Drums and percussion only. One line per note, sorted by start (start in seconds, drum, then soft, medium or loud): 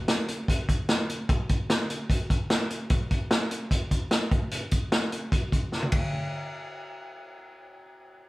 0.08 snare loud
0.08 closed hi-hat medium
0.28 closed hi-hat medium
0.48 kick medium
0.48 closed hi-hat medium
0.69 kick medium
0.69 closed hi-hat medium
0.89 snare loud
0.89 closed hi-hat medium
1.09 closed hi-hat medium
1.29 kick loud
1.29 closed hi-hat medium
1.49 kick medium
1.49 closed hi-hat medium
1.70 snare loud
1.70 closed hi-hat medium
1.90 closed hi-hat medium
2.10 kick medium
2.10 closed hi-hat medium
2.30 kick medium
2.30 closed hi-hat medium
2.50 snare medium
2.50 closed hi-hat medium
2.70 closed hi-hat medium
2.90 kick loud
2.90 closed hi-hat medium
3.11 kick medium
3.11 closed hi-hat medium
3.31 snare loud
3.31 closed hi-hat medium
3.51 closed hi-hat medium
3.71 kick medium
3.71 closed hi-hat medium
3.91 kick medium
3.91 closed hi-hat medium
4.11 snare medium
4.11 closed hi-hat medium
4.32 kick medium
4.32 closed hi-hat medium
4.51 closed hi-hat medium
4.71 kick medium
4.71 closed hi-hat medium
4.92 snare loud
4.92 closed hi-hat medium
5.12 closed hi-hat medium
5.32 kick medium
5.32 closed hi-hat medium
5.52 kick medium
5.52 closed hi-hat medium
5.72 snare soft
5.82 high tom soft
5.92 kick medium
5.92 ride medium